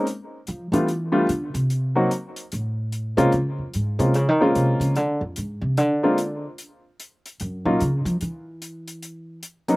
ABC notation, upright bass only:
X:1
M:4/4
L:1/8
Q:"Swing" 1/4=147
K:Ebdor
V:1 name="Upright bass" clef=bass
z2 F, =E,3 =D, C,- | C,2 z2 =A,,3 C, | D, F,, A,, C, (3D, E, D, C, D, | =D, F,, A,, C, D,3 z |
z4 G,, B,, D, F, | =E,6 z2 |]